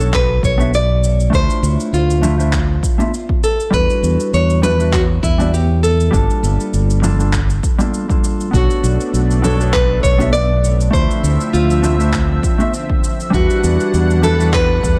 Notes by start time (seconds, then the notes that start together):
Already playing: B1 B3 A4
0.00 D4 F#4 A4 C#5, cabasa
0.13 B4, kick, clap, cabasa
0.43 B1 C#5, kick, cabasa
0.58 B3 D4 F#4 A4 E5, high conga, cabasa
0.74 D5, cabasa
1.04 cabasa
1.20 cabasa
1.30 D2 A3 D4 E4, kick, cabasa
1.34 F4 C5
1.50 cabasa
1.62 D2, cabasa
1.80 cabasa
1.92 D2 F4, cabasa
2.10 cabasa
2.21 A3 D4 E4 F4 C5, low conga, cabasa
2.38 A3 D4 E4 F4 C5, cabasa
2.53 kick, clap, cabasa
2.83 kick, cabasa
2.98 A3 D4 E4 F4 E5, high conga, cabasa
3.14 cabasa
3.29 kick
3.44 A4, cabasa
3.60 cabasa
3.70 E2 G3 D4 E4 B4, kick, cabasa
3.75 F#4 B4
3.90 cabasa
4.03 E2, cabasa
4.20 cabasa
4.33 E2 C#5, cabasa
4.50 cabasa
4.62 G3 D4 E4 F#4 B4, low conga, cabasa
4.78 G3 D4 E4 F#4 B4, cabasa
4.93 F#4, kick, clap, cabasa
5.23 E2 E4, kick, cabasa
5.38 G3 D4 E4 F#4 D5, high conga, cabasa
5.54 G4, cabasa
5.83 A4, cabasa
6.00 cabasa
6.11 G1 G3 A#3 D4, kick, cabasa
6.15 F4 A4
6.30 cabasa
6.43 G1, cabasa
6.60 cabasa
6.73 G1, cabasa
6.90 cabasa
7.02 G3 A#3 D4 F4 A4, low conga, cabasa
7.18 G3 A#3 D4 F4 A4, cabasa
7.33 kick, clap, cabasa
7.50 cabasa
7.63 kick, cabasa
7.78 G3 A#3 D4 F4 A4, high conga, cabasa
7.94 cabasa
8.08 G3 A#3 D4 F4 A4, kick, cabasa
8.24 cabasa
8.40 cabasa
8.51 B1 A3 B3 D4 F#4, kick, cabasa
8.55 A4 C#5
8.70 cabasa
8.83 B1, cabasa
9.01 cabasa
9.13 B1, cabasa
9.31 cabasa
9.42 B3 D4 F#4 A4 C#5, low conga, cabasa
9.59 B3 D4 F#4 A4 C#5, cabasa
9.73 B4, kick, clap, cabasa
10.03 B1 C#5, kick, cabasa
10.18 B3 D4 F#4 A4 E5, high conga, cabasa
10.33 D5, cabasa
10.64 cabasa
10.81 cabasa
10.91 D2 D3 F3 A3 C4 D4 E4 C5 E5, kick, cabasa
10.95 F4 C5
11.11 cabasa
11.23 D2, cabasa
11.41 cabasa
11.53 D2 F4, cabasa
11.70 cabasa
11.82 A3 D4 E4 F4 C5, low conga, cabasa
11.98 A3 D4 E4 F4 C5, cabasa
12.13 kick, clap, cabasa
12.43 kick, cabasa
12.58 A3 D4 F4 E5, high conga, cabasa
12.74 cabasa
12.90 kick
13.04 cabasa
13.20 cabasa
13.30 E2 E3 G3 D4 E4 F#4 F#5, kick, cabasa
13.35 F#4 B4
13.50 cabasa
13.63 E2, cabasa
13.80 cabasa
13.93 E2, cabasa
14.11 cabasa
14.22 G3 D4 E4 F#4 A4 B4, low conga, cabasa
14.38 G3 D4 E4 F#4 B4, cabasa
14.53 B4, kick, clap, cabasa
14.83 E2, kick, cabasa